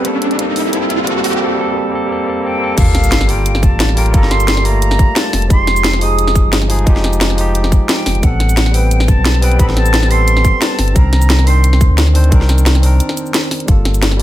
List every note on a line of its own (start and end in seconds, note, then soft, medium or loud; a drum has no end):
0.00 0.35 G3 medium
0.00 0.36 A#3 medium
0.00 riser medium
0.05 0.38 C4 medium
0.05 0.39 A4 medium
0.05 closed hi-hat medium
0.22 closed hi-hat medium
0.31 closed hi-hat soft
0.36 0.69 G3 medium
0.36 0.71 A#3 medium
0.36 0.72 C4 medium
0.36 closed hi-hat medium
0.42 0.73 A4 medium
0.56 open hi-hat medium
0.70 1.03 G3 medium
0.70 1.05 A#3 medium
0.70 closed hi-hat loud
0.74 1.06 C4 medium
0.74 1.07 A4 medium
0.90 closed hi-hat medium
1.04 1.37 G3 medium
1.04 1.39 A#3 medium
1.04 1.40 C4 medium
1.04 closed hi-hat medium
1.10 1.41 A4 medium
1.24 open hi-hat medium
1.33 closed hi-hat soft
1.38 1.54 G3 medium
1.38 1.56 A#3 medium
1.38 1.57 C4 medium
1.44 1.59 A4 medium
1.55 1.71 G3 medium
1.55 1.73 A#3 medium
1.55 1.74 C4 medium
1.61 1.75 A4 medium
1.72 1.88 G3 medium
1.72 1.90 A#3 medium
1.72 1.91 C4 medium
1.78 1.92 A4 medium
1.89 2.05 G3 medium
1.89 2.07 A#3 medium
1.89 2.09 C4 medium
1.95 2.10 A4 medium
2.06 2.22 G3 medium
2.06 2.24 A#3 medium
2.06 2.26 C4 medium
2.12 2.27 A4 medium
2.24 2.39 G3 medium
2.24 2.41 A#3 medium
2.24 2.43 C4 medium
2.30 2.44 A4 medium
2.41 2.57 G3 medium
2.41 2.58 A#3 medium
2.41 2.76 G5 medium
2.45 2.60 C4 medium
2.45 2.61 A4 medium
2.58 2.73 G3 medium
2.58 2.75 A#3 medium
2.58 2.77 C4 medium
2.64 2.78 A4 medium
2.75 3.70 G1 loud
2.75 3.25 G3 medium
2.75 3.26 A#3 medium
2.75 3.27 F4 medium
2.75 3.31 F5 loud
2.75 kick loud
2.75 closed hi-hat loud
2.75 crash loud
2.75 sub drop medium
2.75 shaker soft
2.81 3.28 A4 medium
2.95 snare medium
2.95 closed hi-hat medium
3.04 closed hi-hat soft
3.04 shaker medium
3.12 snare loud
3.12 closed hi-hat medium
3.12 shaker soft
3.21 snare medium
3.26 3.94 G3 medium
3.26 3.95 A#3 medium
3.26 3.96 F4 medium
3.26 3.64 G5 medium
3.26 open hi-hat medium
3.32 3.97 A#4 medium
3.46 closed hi-hat loud
3.46 shaker medium
3.55 snare medium
3.63 3.98 A5 loud
3.63 kick loud
3.63 closed hi-hat medium
3.63 shaker medium
3.72 4.13 A1 medium
3.80 snare loud
3.80 closed hi-hat medium
3.80 shaker soft
3.89 snare soft
3.95 4.10 G3 medium
3.95 4.12 A#3 medium
3.95 4.12 F4 medium
3.95 4.13 A#4 loud
3.95 4.13 G5 medium
3.95 open hi-hat medium
4.06 closed hi-hat soft
4.11 5.07 G1 loud
4.11 4.61 G3 medium
4.11 4.63 A#3 medium
4.11 4.64 F4 medium
4.11 4.32 A#5 loud
4.11 kick loud
4.11 closed hi-hat loud
4.11 shaker soft
4.17 4.65 A4 loud
4.23 snare soft
4.31 4.66 C6 loud
4.31 snare soft
4.31 closed hi-hat medium
4.40 closed hi-hat soft
4.40 shaker medium
4.48 snare loud
4.48 closed hi-hat medium
4.48 shaker soft
4.57 snare medium
4.62 5.47 G3 medium
4.62 5.48 A#3 medium
4.62 5.49 F4 medium
4.62 5.18 A#5 loud
4.62 open hi-hat medium
4.68 5.50 A3 medium
4.82 closed hi-hat medium
4.82 shaker soft
4.91 snare medium
4.99 kick loud
4.99 closed hi-hat medium
4.99 shaker medium
5.16 5.50 A5 loud
5.16 snare loud
5.16 closed hi-hat medium
5.16 shaker soft
5.33 5.49 F1 loud
5.33 snare medium
5.33 open hi-hat medium
5.42 closed hi-hat soft
5.47 6.43 F1 loud
5.47 5.98 F3 medium
5.47 5.99 G#3 medium
5.47 6.00 D#4 medium
5.47 6.03 C6 loud
5.47 kick loud
5.47 closed hi-hat medium
5.47 shaker soft
5.53 6.01 G4 medium
5.67 snare soft
5.67 closed hi-hat medium
5.76 closed hi-hat soft
5.76 shaker medium
5.84 snare loud
5.84 closed hi-hat medium
5.84 shaker soft
5.93 snare soft
5.99 6.66 F3 medium
5.99 6.67 G#3 medium
5.99 6.68 D#4 medium
5.99 6.53 D#6 loud
5.99 open hi-hat medium
6.04 6.69 G#4 loud
6.19 closed hi-hat medium
6.19 shaker soft
6.28 snare soft
6.35 kick loud
6.35 closed hi-hat medium
6.35 shaker medium
6.45 6.86 G1 medium
6.53 snare loud
6.53 closed hi-hat medium
6.53 shaker soft
6.62 snare soft
6.68 6.83 F3 medium
6.68 6.85 G#3 medium
6.68 6.85 D#4 medium
6.68 6.85 G#4 loud
6.68 open hi-hat medium
6.79 closed hi-hat soft
6.84 7.79 F1 loud
6.84 7.34 F3 medium
6.84 7.35 G#3 medium
6.84 7.36 D#4 medium
6.84 kick loud
6.84 closed hi-hat medium
6.84 shaker soft
6.90 7.37 G4 loud
6.96 snare soft
7.04 snare soft
7.04 closed hi-hat medium
7.13 closed hi-hat soft
7.13 shaker medium
7.21 snare loud
7.21 closed hi-hat medium
7.21 shaker soft
7.30 snare soft
7.35 8.20 F3 medium
7.35 8.21 G#3 medium
7.35 8.22 D#4 medium
7.35 open hi-hat medium
7.35 shaker soft
7.41 8.23 G4 medium
7.55 closed hi-hat medium
7.55 shaker soft
7.64 snare soft
7.72 kick loud
7.72 closed hi-hat medium
7.72 shaker medium
7.89 8.25 G5 medium
7.89 snare loud
7.89 closed hi-hat medium
7.89 shaker soft
8.06 8.14 F1 medium
8.06 snare medium
8.06 open hi-hat medium
8.15 8.22 F1 medium
8.15 closed hi-hat soft
8.20 9.16 A1 medium
8.20 8.70 G3 medium
8.20 8.72 B3 medium
8.20 8.73 C4 medium
8.20 8.76 F#5 loud
8.20 kick loud
8.20 closed hi-hat medium
8.20 shaker soft
8.26 8.74 A4 medium
8.40 snare soft
8.40 closed hi-hat medium
8.49 closed hi-hat soft
8.49 shaker medium
8.57 snare loud
8.57 closed hi-hat medium
8.57 shaker soft
8.66 snare soft
8.71 9.39 G3 medium
8.71 9.40 B3 medium
8.71 9.41 C4 medium
8.71 9.10 G5 loud
8.71 open hi-hat medium
8.77 9.42 B4 medium
8.91 closed hi-hat medium
8.91 shaker medium
9.00 snare soft
9.08 9.44 A5 loud
9.08 kick loud
9.08 closed hi-hat medium
9.08 shaker medium
9.17 9.58 B1 medium
9.25 snare loud
9.25 closed hi-hat medium
9.25 shaker soft
9.34 snare soft
9.41 9.55 G3 medium
9.41 9.57 B3 medium
9.41 9.58 C4 medium
9.41 9.58 B4 loud
9.41 9.59 G5 loud
9.41 open hi-hat medium
9.51 closed hi-hat soft
9.57 10.52 A1 loud
9.57 10.07 G3 medium
9.57 10.08 B3 medium
9.57 9.66 B5 loud
9.57 kick loud
9.57 closed hi-hat medium
9.57 shaker medium
9.61 10.09 C4 medium
9.61 10.10 A4 loud
9.69 snare soft
9.76 10.12 A5 loud
9.76 snare soft
9.76 closed hi-hat medium
9.86 closed hi-hat soft
9.86 shaker medium
9.94 snare loud
9.94 closed hi-hat medium
9.94 shaker medium
10.03 snare soft
10.08 10.93 G3 medium
10.08 10.93 B3 medium
10.08 10.94 C4 medium
10.08 10.63 C6 loud
10.08 open hi-hat medium
10.14 10.95 A4 medium
10.28 closed hi-hat loud
10.28 shaker medium
10.37 snare soft
10.45 kick loud
10.45 closed hi-hat medium
10.45 shaker medium
10.61 10.97 A5 loud
10.61 snare loud
10.61 closed hi-hat medium
10.61 shaker medium
10.79 10.94 G1 loud
10.79 snare medium
10.79 open hi-hat medium
10.88 closed hi-hat soft
10.93 11.89 C2 loud
10.93 11.43 D#3 medium
10.93 11.45 C4 medium
10.93 11.45 D4 medium
10.93 11.48 A#5 loud
10.93 kick loud
10.93 closed hi-hat loud
10.93 shaker medium
10.99 11.46 A#4 medium
11.13 snare soft
11.13 closed hi-hat medium
11.22 closed hi-hat soft
11.22 shaker medium
11.30 snare loud
11.30 closed hi-hat medium
11.30 shaker soft
11.39 snare soft
11.44 12.12 D#3 medium
11.44 12.13 C4 medium
11.44 12.14 D4 medium
11.44 11.98 C6 loud
11.44 open hi-hat medium
11.50 12.15 C5 medium
11.64 closed hi-hat loud
11.64 shaker medium
11.73 snare soft
11.81 kick loud
11.81 closed hi-hat medium
11.81 shaker medium
11.90 12.31 D2 medium
11.98 snare loud
11.98 closed hi-hat medium
11.98 shaker medium
12.07 snare soft
12.13 12.28 D#3 medium
12.13 12.30 C4 medium
12.13 12.30 D4 medium
12.13 12.31 C5 loud
12.13 open hi-hat medium
12.24 closed hi-hat soft
12.29 13.00 C2 loud
12.29 12.79 D#3 medium
12.29 12.81 C4 medium
12.29 12.82 D4 medium
12.29 kick loud
12.29 closed hi-hat loud
12.29 shaker soft
12.35 12.83 A#4 loud
12.41 snare soft
12.49 snare soft
12.49 closed hi-hat medium
12.49 shaker soft
12.58 closed hi-hat soft
12.58 shaker medium
12.66 snare loud
12.66 closed hi-hat medium
12.66 shaker medium
12.75 snare soft
12.75 closed hi-hat soft
12.80 13.65 D#3 medium
12.80 13.66 C4 medium
12.80 13.67 D4 medium
12.80 open hi-hat medium
12.80 shaker soft
12.86 13.68 A#4 medium
13.00 closed hi-hat loud
13.00 shaker medium
13.09 snare soft
13.17 closed hi-hat medium
13.17 shaker medium
13.26 shaker soft
13.34 snare loud
13.34 closed hi-hat loud
13.34 shaker soft
13.51 snare medium
13.51 open hi-hat medium
13.51 shaker soft
13.60 closed hi-hat soft
13.66 14.22 G1 loud
13.66 14.16 G3 medium
13.66 14.17 A#3 medium
13.66 14.18 F4 medium
13.66 kick loud
13.66 closed hi-hat loud
13.66 shaker soft
13.71 14.19 A4 medium
13.85 snare medium
13.85 closed hi-hat medium
13.94 closed hi-hat soft
13.94 shaker medium
14.02 snare loud
14.02 closed hi-hat loud
14.02 shaker soft
14.11 snare soft
14.17 14.22 G3 medium
14.17 14.22 A#3 medium
14.17 14.22 A5 medium